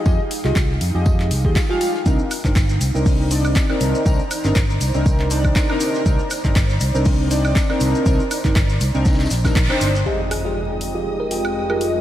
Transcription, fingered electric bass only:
X:1
M:4/4
L:1/16
Q:"Swing 16ths" 1/4=120
K:Fdor
V:1 name="Fingered electric bass" clef=bass
F,, z2 C,, C,,2 F,, F,,3 C,, E,, z4 | C,, z2 G,,, G,,,2 C,, C,,4- C,, z2 C,, z | C,, z2 G,,, G,,,2 C,, C,,4- C,, z4 | C,, z2 G,,, G,,,2 C,, C,,4- C,, z2 C,, z |
C,, z2 G,,, G,,,2 C,, C,,3 B,,,2 B,,, z G,,,2 | z16 |]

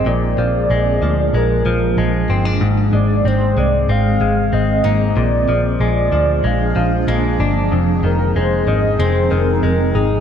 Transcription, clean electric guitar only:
X:1
M:4/4
L:1/16
Q:1/4=94
K:Bbmix
V:1 name="Clean electric guitar" clef=bass
B,,2 F,2 A,2 F,2 A,2 F,2 A,2 C D | A,,2 A,2 C2 A,2 C2 A,2 C2 E2 | B,,2 F,2 A,2 F,2 A,2 F,2 A,2 D2 | F,,2 E,2 A,2 E,2 A,2 E,2 A,2 E2 |]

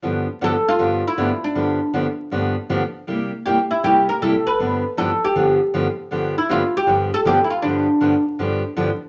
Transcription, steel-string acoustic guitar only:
X:1
M:4/4
L:1/16
Q:"Swing" 1/4=158
K:Gmix
V:1 name="Steel-string acoustic guitar"
[G,,D,F,B,DG]2 z2 [G,,D,F,B,DG] z3 [G,,D,F,B,DG]2 z2 [G,,D,F,B,DG] z3 | [G,,D,F,B,DG]2 z2 [G,,D,F,B,DG] z3 [G,,D,F,B,DG]2 z2 [G,,D,F,B,DG] z3 | [C,G,_B,EG]2 z2 [C,G,B,EG] z3 [C,G,B,EG]2 z2 [C,G,B,EG] z3 | [G,,D,F,B,DG]2 z2 [G,,D,F,B,DG] z3 [G,,D,F,B,DG]2 z2 [G,,D,F,B,DG] z3 |
[G,,D,F,B,DG]2 z2 [G,,D,F,B,DG] z3 [G,,D,F,B,DG]2 z2 [G,,D,F,B,DG] z3 | [G,,D,F,B,DG]2 z2 [G,,D,F,B,DG] z3 [G,,D,F,B,DG]2 z2 [G,,D,F,B,DG] z3 |]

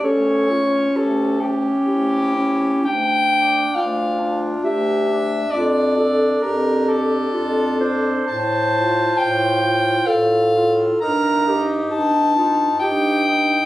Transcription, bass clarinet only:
X:1
M:3/4
L:1/8
Q:1/4=66
K:Dm
V:1 name="Bass clarinet" clef=bass
D,,2 D,,2 D,,2 | D,,2 D,,2 D,,2 | F,,2 F,,2 F,,2 | [K:Fmix] A,,2 A,,2 A,,2 |
G,,2 G,,2 G,,2 |]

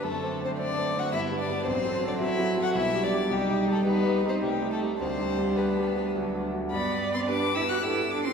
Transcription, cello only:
X:1
M:3/4
L:1/16
Q:1/4=109
K:G
V:1 name="Cello"
D,12 | F,8 G,4- | G,8 A,4 | G,8 F,2 z2 |
B,3 C D2 E F E2 D C |]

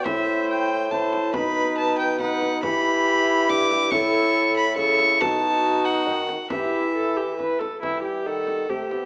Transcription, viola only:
X:1
M:3/4
L:1/8
Q:1/4=140
K:Em
V:1 name="Viola"
c4 c2 | B4 B2 | G6 | A4 A2 |
F6 | G2 A G B A | E G A2 G2 |]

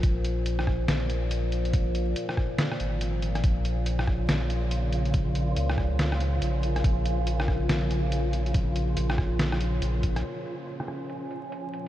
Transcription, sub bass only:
X:1
M:4/4
L:1/8
Q:"Swing 16ths" 1/4=141
K:Bbm
V:1 name="Sub bass" clef=bass
B,,,4 B,,,4- | B,,,2 z3 A,,,3 | B,,,4 B,,,4- | B,,,2 D,,4 B,,,2 |
B,,,4 B,,,4- | B,,,2 B,,,4 B,,,2 | z8 |]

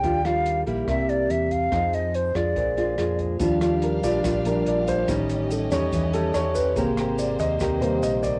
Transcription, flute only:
X:1
M:4/4
L:1/8
Q:1/4=143
K:Eb
V:1 name="Flute"
g f2 z =e d e f- | f e c d4 z | z8 | z8 |
z8 |]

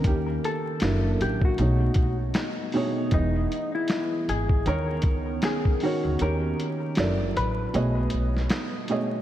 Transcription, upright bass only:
X:1
M:4/4
L:1/16
Q:"Swing 16ths" 1/4=78
K:B
V:1 name="Upright bass" clef=bass
D,,2 z2 F,,,2 =A,,,2 B,,,2 B,,,2 z4 | E,,,2 z4 G,,,2 D,,2 C,,2 z3 =D,, | D,,2 z2 F,,,2 =A,,,2 B,,,2 B,,,2 z4 |]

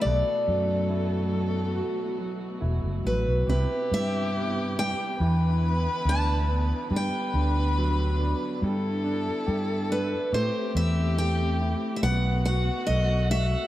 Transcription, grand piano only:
X:1
M:4/4
L:1/8
Q:1/4=70
K:Em
V:1 name="Grand piano"
B,, F, E F, F F, E F, | C, G, B, G, E, B, D B, | G, D F, D G, D G D | A, E A, E B, F A F |]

